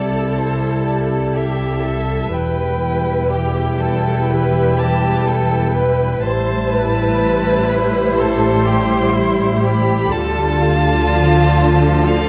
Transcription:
Already playing: double bass section C2, cello section C2, viola section G3 E4, violin section A4, violin D5
0.38 violin C5
0.87 violin D5
1.36 violin section G4, violin E5
1.84 violin section A4
2.32 double bass section E1, cello section E2, viola section G3 E4, violin section B4, violin G5
3.30 violin section G4, violin G5
3.80 violin section A4
4.30 violin section B4
4.79 violin section G4, violin A5
5.27 violin section A4, violin G5
5.75 violin section B4
6.22 double bass section A1, cello section A2, viola section G3 E4, violin section C5, violin A5
6.72 violin section B4
7.69 violin B5
8.17 violin section A4, violin C6
8.67 violin section G4
9.15 violin section E4
9.63 violin section G4, violin B5
10.11 double bass section D2, cello section D3, viola section F4, violin section A4, violin A5
10.60 violin section F4
11.08 viola section F3
12.05 violin section A4, violin F5

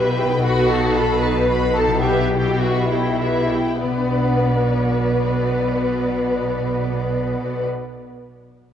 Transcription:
Already playing: double bass section B1, harp B2 E4 G4 B4 B5, cello section B2, viola section G4 B4, violin section B4 E5
0.17 viola section E4 G4, violin section G5
0.25 harp B2
0.29 harp D#4
0.33 harp A4
0.38 harp B4
0.42 double bass section B1, cello section B2, violin section F#4 B5, viola section F#4 B4
0.70 viola section D#4 A4, violin section A5
0.95 viola section F#4 B4, violin section A4 B5
1.21 viola section D#4 A4, violin section B4 A5
1.49 viola section F#4 B4, violin section B5
1.75 viola section D#4 A4, violin section A4 A5
1.86 harp B2 E4
1.95 harp G4
2.00 violin section G4 E5, harp B4
2.06 viola section G4 B4
2.31 viola section E4 G4, violin section G5
2.59 violin section F#4 E5, viola section G4
2.63 viola section B4
2.90 violin section E4 G5, viola section E4 G4
3.20 viola section G4 B4, violin section E5
3.52 viola section E4 G4, violin section G5
3.83 double bass section B1, cello section B2, harp B2, violin section B3 D5, viola section B3 B4
3.91 harp B3
3.98 harp D4
4.04 harp F#4
4.12 harp B4
4.19 harp F#5

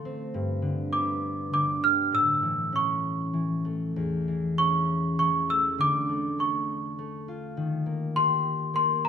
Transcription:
Already playing: harp D3 A3 F4
0.05 harp C4
0.34 harp G2
0.62 harp D3
0.93 harp B3, celesta D6
1.53 harp D3, celesta D6
1.83 harp G3, celesta F6
2.12 harp A2, celesta E6
2.43 harp E3
2.72 harp C#4, celesta C#6
3.33 harp E3
3.65 harp A3
3.96 harp E2
4.28 harp E3
4.58 harp C#4, celesta C#6
5.19 harp E3, celesta C#6
5.49 harp A3, celesta E6
5.78 harp D3, celesta D6
6.09 harp A3
6.39 harp A4, celesta C#6
6.99 harp A3
7.28 harp F4
7.57 harp D#3
7.86 harp A#3
8.16 harp G4, celesta C6
8.74 harp A#3, celesta C6
9.05 celesta A#5

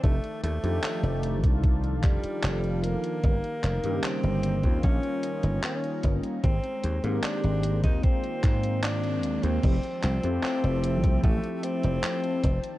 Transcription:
Already playing: analog synth pad D#3 D5 G5 A5
0.03 slap bass F1, analog polysynth F3 A3 D4 D#4 G4, tenor saxophone A3, kick, closed hi-hat
0.24 closed hi-hat
0.43 slap bass D#2, tenor saxophone A3, closed hi-hat
0.63 slap bass F2, analog polysynth F3 A3 D4 D#4 G4, closed hi-hat
0.84 clap, closed hi-hat
1.03 slap bass F1, closed hi-hat
1.23 analog synth pad F5, closed hi-hat
1.42 slap bass C2, analog polysynth F3 D4 D#4 F4 A4, kick, closed hi-hat
1.64 kick, closed hi-hat
1.84 closed hi-hat
2.03 slap bass F1, tenor saxophone G3, kick, clap, closed hi-hat
2.24 muted slap bass stroke, closed hi-hat
2.43 slap bass F1, clap, closed hi-hat
2.64 closed hi-hat
2.83 tenor saxophone A#3, closed hi-hat
3.04 closed hi-hat
3.23 slap bass G1, analog polysynth D#3 G3 A#3 C#4 G4, analog synth pad D#5 G5 A#5, kick, closed hi-hat
3.44 closed hi-hat
3.64 slap bass F1, clap, closed hi-hat
3.83 slap bass G2, analog polysynth C#3 D#3 G3 A#3 G4, closed hi-hat
4.03 tenor saxophone C4, clap, closed hi-hat
4.23 slap bass G1, closed hi-hat
4.43 closed hi-hat
4.62 slap bass D#2, analog polysynth D#3 G3 A#3 C#4 F4, kick, closed hi-hat
4.83 slap bass A#1, tenor saxophone C#4, kick, closed hi-hat
5.03 closed hi-hat
5.23 closed hi-hat
5.43 slap bass G1, closed hi-hat
5.63 tenor saxophone C#4, clap, closed hi-hat
5.84 closed hi-hat
6.03 slap bass G1, kick, closed hi-hat
6.24 closed hi-hat
6.43 slap bass G#1, analog polysynth D#3 G#3 A#3 C4 G4, analog synth pad G#3 C5 G5, tenor saxophone C4, kick, closed hi-hat
6.64 closed hi-hat
6.84 slap bass D#2, closed hi-hat
7.03 slap bass G#2, analog polysynth D#3 G#3 A#3 C4 G4, tenor saxophone A#3, closed hi-hat
7.23 tenor saxophone D4, clap, closed hi-hat
7.44 slap bass G#1, closed hi-hat
7.63 closed hi-hat
7.82 slap bass D#2, analog polysynth D#3 G#3 A#3 C4 F4, tenor saxophone D#4, kick, closed hi-hat
8.03 tenor saxophone C4, kick, closed hi-hat
8.24 closed hi-hat
8.44 slap bass G#2, kick, clap, closed hi-hat
8.63 closed hi-hat
8.83 tenor saxophone D4, clap, closed hi-hat
9.04 closed hi-hat
9.23 slap bass D#2, closed hi-hat
9.43 slap bass D#2, tenor saxophone C4, closed hi-hat
9.62 slap bass F1, analog polysynth F3 A3 C4 E4 G4, analog synth pad F3 E5 G5 A5, kick, closed hi-hat, crash
9.83 closed hi-hat
10.03 slap bass C2, tenor saxophone C4, clap, closed hi-hat
10.22 slap bass F2, analog polysynth F3 A3 C4 E4 G4, closed hi-hat
10.43 clap, closed hi-hat
10.64 slap bass F1, closed hi-hat
10.84 closed hi-hat
11.02 slap bass C2, analog polysynth F3 A3 C4 E4 G4, kick, closed hi-hat
11.23 slap bass A1, tenor saxophone A3, kick, closed hi-hat
11.44 closed hi-hat
11.63 tenor saxophone C4, closed hi-hat
11.83 slap bass F1, closed hi-hat
12.03 clap, closed hi-hat
12.24 closed hi-hat
12.44 slap bass F1, analog synth pad D#3 D5, kick, closed hi-hat
12.64 closed hi-hat

